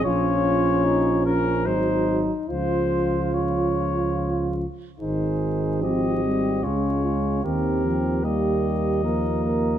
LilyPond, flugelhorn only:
\new Staff \with { instrumentName = "Flugelhorn" } { \time 3/4 \key des \major \tempo 4 = 74 f'4 ees'8 des'8 ees'4 | f'2~ f'8 r8 | \key aes \major aes'4 g'4 f'8 f'8 | g'4 g'4 bes'8 bes'8 | }